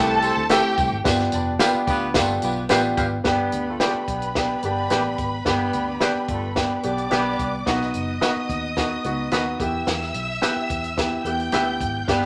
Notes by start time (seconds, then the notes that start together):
Already playing: C2 A3 B3 C4 E4 G4 A4 B4 A5
0.22 C4 G4 A4 C5, closed hi-hat, tambourine
0.37 D2
0.49 A3 C4 E4 G4 A4 E5 G5, snare, closed hi-hat, tambourine
0.77 C2, kick, closed hi-hat, tambourine
0.92 G#1
1.04 G1 B3 D4 F4 G4, kick, snare, closed hi-hat, tambourine
1.19 snare
1.32 F1 D4 G4 B4 D5, closed hi-hat, tambourine
1.59 B3 D4 F4 G4 B4 F5, snare, closed hi-hat, tambourine
1.74 muted fingered electric bass stroke
1.87 D2 B3 F4 G4 B4, kick, closed hi-hat, tambourine
2.14 G1 A3 B3 D4 F4 G4 A4, kick, snare, closed hi-hat, tambourine
2.42 B1 B3 F4 G4 B4, closed hi-hat, tambourine
2.69 A1 B3 D4 F4 G4 B4 F5, snare, closed hi-hat, tambourine
2.97 G#1 G4 B4 F5, kick, closed hi-hat, tambourine
3.24 G1 B3 D4 G4 B4 B5, kick, snare, closed hi-hat
3.52 D2, closed hi-hat
3.68 A3 D4 F4 A4
3.79 A3 B3 D4 F4 G4 A4 B4 D5, snare, closed hi-hat
3.88 G4
3.94 muted fingered electric bass stroke
4.08 B1 B3 D4 G4 B4, kick, closed hi-hat
4.22 closed hi-hat
4.35 B3 D4 G4 B4, kick, snare, closed hi-hat
4.63 G1 B3 D4 G4 B4 D5, closed hi-hat
4.90 A1 B3 D4 G4 B4 D5, snare, closed hi-hat
5.18 G#1, kick, closed hi-hat
5.45 G1 B3 D4 G4 B4, kick, snare, closed hi-hat
5.73 D2, closed hi-hat
5.87 B3 D4 G4 B4
6.00 B3 D4 G4 B4 D5, snare, closed hi-hat
6.15 muted fingered electric bass stroke
6.28 G1 A3 D4 F4 A4, kick, closed hi-hat
6.55 B3 D4 G4 B4, kick, snare, closed hi-hat
6.83 B1 B3 D4 G4 B4 D5 D6, closed hi-hat
6.98 closed hi-hat
7.10 B1 B3 D4 G4 B4 D5, snare, closed hi-hat
7.39 C2, kick, closed hi-hat
7.66 B1 B3 D#4 F#4 D#5 D#6, kick, snare, closed hi-hat
7.81 snare
7.94 F#1, closed hi-hat
8.21 B3 D#4 F#4 B4 D#5, snare, closed hi-hat
8.36 muted fingered electric bass stroke
8.49 D#2, kick, closed hi-hat
8.77 B3 D#4 F#4, kick, snare, closed hi-hat
9.04 C#2 B3 D#4 F#4, closed hi-hat
9.31 D#2 B3 D#4 F#4 B4 D#5, snare, closed hi-hat
9.59 E2 B3 E4 G4 E5 E6, kick, closed hi-hat
9.87 E2, snare, closed hi-hat
10.01 snare
10.14 B1, closed hi-hat
10.42 B3 E4 G4 B4 E5, snare, closed hi-hat
10.56 muted fingered electric bass stroke
10.70 E2, kick, closed hi-hat
10.84 closed hi-hat
10.97 B3 E4 G4, kick, snare, closed hi-hat
11.24 E2 B3 E4 G4 G5 G6, closed hi-hat
11.39 closed hi-hat
11.52 D2 B3 E4 G4 B4 E5, snare, closed hi-hat
11.80 G#1, kick, closed hi-hat
12.07 G1 B3 D4 G4 B4 F5 F6, kick, snare, closed hi-hat
12.22 snare